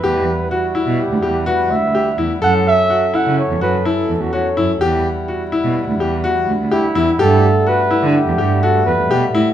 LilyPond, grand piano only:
\new Staff \with { instrumentName = "Grand piano" } { \time 5/4 \key e \minor \tempo 4 = 126 g'4 fis'8 e'4 g'8 fis'4 g'8 e'8 | a'4 fis'8 e'4 fis'8 e'4 fis'8 e'8 | g'4 fis'8 e'4 g'8 fis'4 g'8 e'8 | g'4 fis'8 e'4 g'8 fis'4 g'8 e'8 | }